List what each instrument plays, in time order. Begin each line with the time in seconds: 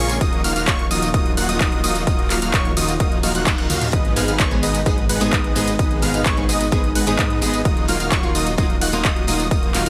Already playing: detuned saw bass A#1, analog synth pad C#3 F3 G#3 A#3 F4, supersaw synth A#3 C#4 F4 G#4 C#5, digital synth lead C#6
0.09 closed hi-hat, tambourine
0.21 detuned saw bass D#1, analog synth pad D#3 F#3, supersaw synth A#3 D#4 F4 F#4 D#5, digital synth lead D#6, kick, closed hi-hat, ride, tambourine
0.33 closed hi-hat
0.44 detuned saw bass D#1, supersaw synth A#3 D#4 F4 F#4 F5, digital synth lead F6, open hi-hat, ride, tambourine
0.56 detuned saw bass D#1, supersaw synth A#3 D#4 F4 F#4 F5, digital synth lead F6, closed hi-hat, tambourine
0.68 detuned saw bass D#1, supersaw synth A#3 D#4 F4 F#4 C#5, digital synth lead C#6, kick, clap, closed hi-hat, ride, tambourine
0.79 closed hi-hat
0.91 detuned saw bass D#1, supersaw synth A#3 D#4 F4 F#4 D#5, digital synth lead D#6, open hi-hat, ride, tambourine
1.02 closed hi-hat, tambourine
1.14 detuned saw bass D#1, supersaw synth A#3 D#4 F4 F#4 D#5, digital synth lead D#6, kick, closed hi-hat, ride, tambourine
1.26 closed hi-hat
1.37 detuned saw bass D#1, supersaw synth A#3 D#4 F4 F#4 F#5, digital synth lead F#6, open hi-hat, ride, tambourine
1.49 detuned saw bass D#1, supersaw synth A#3 D#4 F4 F#4 D#5, digital synth lead D#6, closed hi-hat, tambourine
1.60 detuned saw bass D#1, digital synth lead D#6, kick, clap, closed hi-hat, ride, tambourine
1.72 closed hi-hat
1.84 detuned saw bass D#1, supersaw synth A#3 D#4 F4 F#4 D#5, digital synth lead D#6, open hi-hat, ride, tambourine
1.95 closed hi-hat, tambourine
2.07 detuned saw bass D#1, supersaw synth A#3 D#4 F4 F#4 D#5, digital synth lead D#6, kick, closed hi-hat, ride, tambourine
2.19 closed hi-hat
2.30 detuned saw bass D#1, supersaw synth A#3 D#4 F4 F#4 F5, digital synth lead F6, clap, open hi-hat, ride, tambourine
2.42 detuned saw bass D#1, supersaw synth A#3 D#4 F4 F#4 F5, digital synth lead F6, closed hi-hat, tambourine
2.54 detuned saw bass D#1, supersaw synth A#3 D#4 F4 F#4 C#5, digital synth lead C#6, kick, clap, closed hi-hat, ride, tambourine
2.65 closed hi-hat
2.77 detuned saw bass D#1, supersaw synth A#3 D#4 F4 F#4 D#5, digital synth lead D#6, open hi-hat, ride, tambourine
2.88 closed hi-hat, tambourine
3.00 detuned saw bass D#1, supersaw synth A#3 D#4 F4 F#4 D#5, digital synth lead D#6, kick, closed hi-hat, ride, tambourine, reverse cymbal
3.12 closed hi-hat
3.23 detuned saw bass D#1, supersaw synth A#3 D#4 F4 F#4 F5, digital synth lead F6, open hi-hat, ride, tambourine
3.35 detuned saw bass D#1, supersaw synth A#3 D#4 F4 F#4 F#5, digital synth lead F#6, closed hi-hat, tambourine
3.47 kick, clap, closed hi-hat, ride, tambourine
3.58 detuned saw bass D#1, supersaw synth A#3 D#4 F4 F#4 F#5, digital synth lead F#6, closed hi-hat
3.70 detuned saw bass D#2, supersaw synth A#3 D#4 F4 F#4 F5, digital synth lead F6, open hi-hat, high tom, ride, tambourine
3.82 closed hi-hat, mid tom, tambourine
3.93 detuned saw bass G#1, analog synth pad B2 G#3 D#4 G#4, supersaw synth G#3 B3 D#4 B4 D#5, digital synth lead D#6, kick, closed hi-hat, ride, tambourine
4.05 closed hi-hat
4.16 detuned saw bass G#1, steel-string acoustic guitar G#2 G#3 B3 D#4 G#4, supersaw synth G#3 B3 D#4 B4 F5, digital synth lead F6, open hi-hat, ride, tambourine
4.28 detuned saw bass G#1, supersaw synth G#3 B3 D#4 B4 F5, digital synth lead F6, closed hi-hat, tambourine
4.40 detuned saw bass G#1, supersaw synth G#3 B3 D#4 C#5, digital synth lead C#6, kick, clap, closed hi-hat, ride, tambourine
4.51 steel-string acoustic guitar G#2 G#3 B3 D#4 G#4, closed hi-hat
4.63 detuned saw bass G#1, supersaw synth G#3 B3 D#4 B4 D#5, digital synth lead D#6, open hi-hat, ride, tambourine
4.75 closed hi-hat, tambourine
4.86 detuned saw bass G#1, steel-string acoustic guitar G#2 G#3 B3 D#4 G#4, supersaw synth G#3 B3 D#4 B4 D#5, digital synth lead D#6, kick, closed hi-hat, ride, tambourine
4.98 closed hi-hat
5.09 detuned saw bass G#1, supersaw synth G#3 B3 D#4 B4 F#5, digital synth lead F#6, open hi-hat, ride, tambourine
5.20 detuned saw bass G#1, steel-string acoustic guitar G#2 G#3 B3 D#4 G#4, supersaw synth G#3 B3 D#4 B4 D#5, digital synth lead D#6, closed hi-hat, tambourine
5.33 detuned saw bass G#1, supersaw synth G#3 B3 B4, digital synth lead D#6, kick, clap, closed hi-hat, ride, tambourine
5.44 closed hi-hat
5.55 detuned saw bass G#1, steel-string acoustic guitar G#2 G#3 B3 D#4 G#4, supersaw synth G#3 B3 D#4 B4 D#5, digital synth lead D#6, open hi-hat, ride, tambourine
5.68 closed hi-hat, tambourine
5.79 detuned saw bass G#1, supersaw synth G#3 B3 D#4 B4 D#5, digital synth lead D#6, kick, closed hi-hat, ride, tambourine
5.91 closed hi-hat
6.02 detuned saw bass G#1, steel-string acoustic guitar G#2 G#3 B3 D#4 G#4, supersaw synth G#3 B3 D#4 B4 F5, digital synth lead F6, open hi-hat, ride, tambourine
6.14 detuned saw bass G#1, supersaw synth G#3 B3 D#4 B4 F5, digital synth lead F6, closed hi-hat, tambourine
6.26 detuned saw bass G#1, supersaw synth G#3 B3 C#5, digital synth lead C#6, kick, clap, closed hi-hat, ride, tambourine
6.37 steel-string acoustic guitar G#2 G#3 B3 D#4 G#4, closed hi-hat
6.49 detuned saw bass G#1, supersaw synth G#3 B3 D#4 B4 D#5, digital synth lead D#6, open hi-hat, ride, tambourine
6.61 closed hi-hat, tambourine
6.71 detuned saw bass G#1, steel-string acoustic guitar G#2 G#3 B3 D#4 G#4, supersaw synth G#3 B3 D#4 B4 D#5, digital synth lead D#6, kick, closed hi-hat, ride, tambourine
6.84 closed hi-hat
6.95 detuned saw bass G#1, supersaw synth G#3 B3 D#4 B4 F#5, digital synth lead F#6, open hi-hat, ride, tambourine
7.06 detuned saw bass G#1, steel-string acoustic guitar G#2 G#3 B3 D#4 G#4, supersaw synth G#3 B3 D#4 B4 D#5, digital synth lead D#6, closed hi-hat, tambourine
7.19 detuned saw bass G#2, supersaw synth G#3 B3 D#4 B4 D#5, digital synth lead D#6, kick, clap, closed hi-hat, ride, tambourine
7.30 closed hi-hat
7.41 detuned saw bass G#1, steel-string acoustic guitar G#3 B3 D#4 G#4, supersaw synth G#3 B3 D#4 B4 D#5, digital synth lead D#6, open hi-hat, ride, tambourine
7.54 closed hi-hat, tambourine
7.65 detuned saw bass D#1, analog synth pad F#3 A#3 F4, supersaw synth F4 F#4, digital synth lead D#6, kick, closed hi-hat, ride, tambourine
7.77 closed hi-hat
7.88 detuned saw bass D#1, steel-string acoustic guitar F#3 A#3 D#4 F4, supersaw synth A#3 D#4 F4 F#4 F5, digital synth lead F6, open hi-hat, ride, tambourine
8.00 detuned saw bass D#1, supersaw synth A#3 D#4 F4 F#4 F5, digital synth lead F6, closed hi-hat, tambourine
8.12 detuned saw bass D#1, supersaw synth A#3 D#4 F4 F#4 C#5, digital synth lead C#6, kick, clap, closed hi-hat, ride, tambourine
8.23 steel-string acoustic guitar F#3 A#3 D#4 F4, closed hi-hat
8.35 detuned saw bass D#1, supersaw synth A#3 D#4 F4 F#4 D#5, digital synth lead D#6, open hi-hat, ride, tambourine
8.47 closed hi-hat, tambourine
8.58 detuned saw bass D#1, steel-string acoustic guitar F#3 A#3 D#4 F4, supersaw synth A#3 D#4 F4 F#4 D#5, digital synth lead D#6, kick, closed hi-hat, ride, tambourine
8.70 closed hi-hat
8.81 detuned saw bass D#1, supersaw synth A#3 D#4 F4 F#4 F#5, digital synth lead F#6, open hi-hat, ride, tambourine
8.92 detuned saw bass D#1, steel-string acoustic guitar F#3 A#3 D#4 F4, supersaw synth A#3 D#4 F4 F#4 D#5, digital synth lead D#6, closed hi-hat, tambourine
9.05 detuned saw bass D#1, supersaw synth A#3 D#4 F4 F#4 D#5, digital synth lead D#6, kick, clap, closed hi-hat, ride, tambourine
9.16 closed hi-hat
9.27 detuned saw bass D#1, steel-string acoustic guitar F#3 A#3 D#4 F4, supersaw synth A#3 D#4 F4 F#4 D#5, digital synth lead D#6, open hi-hat, ride, tambourine
9.40 closed hi-hat, tambourine
9.51 detuned saw bass D#1, supersaw synth A#3 D#4 F4 D#5, analog synth pad D#4, digital synth lead D#6, kick, closed hi-hat, ride, tambourine
9.63 closed hi-hat
9.74 detuned saw bass D#1, steel-string acoustic guitar F#3 A#3 D#4 F4, supersaw synth A#3 D#4 F4 F#4 F5, digital synth lead F6, clap, open hi-hat, ride, tambourine